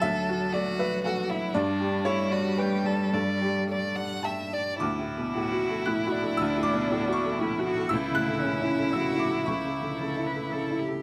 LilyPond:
<<
  \new Staff \with { instrumentName = "Upright piano" } { \time 3/4 \key d \major \tempo 4 = 115 << { e''4 d''8 b'8 a'4 | d''4 cis''4 b'4 | a'2 a''4 | d'''2 fis'''4 |
e'''8 d'''4 cis'''8 r4 | e'''8 fis'''4. e'''8 d'''8 | cis'''2~ cis'''8 r8 | } \\ { d,8 fis'8 a'8 e''8 fis''8 e''8 | g,8 g'8 a'8 d''8 g''8 d''8 | g,8 g'8 a'8 d''8 g''8 d''8 | \tuplet 3/2 { d,8 a,8 b,8 a,8 fis'8 a'8 a,8 fis'8 a'8 } |
\tuplet 3/2 { d,8 a,8 b,8 a,8 fis'8 a'8 a,8 fis'8 a'8 } | \tuplet 3/2 { cis,8 cis8 d8 cis8 e'8 a'8 cis8 e'8 a'8 } | \tuplet 3/2 { cis,8 cis8 d8 cis8 e'8 a'8 cis8 e'8 a'8 } | } >> }
  \new Staff \with { instrumentName = "Violin" } { \time 3/4 \key d \major a'4 fis'4 fis'8 e'8 | d'4 e'8 fis'8 g'8 a'8 | d''4 d''8 fis''8 e''8 d''8 | e'2.~ |
e'2. | e'2.~ | e'2~ e'8 r8 | }
  \new Staff \with { instrumentName = "Cello" } { \time 3/4 \key d \major fis2. | g2.~ | g2~ g8 r8 | r4 fis'4 e'8 d'8~ |
d'2 e'8 fis'8 | e'4 cis'4 fis'4 | e'4 a'8 b'8 a'8 g'8 | }
>>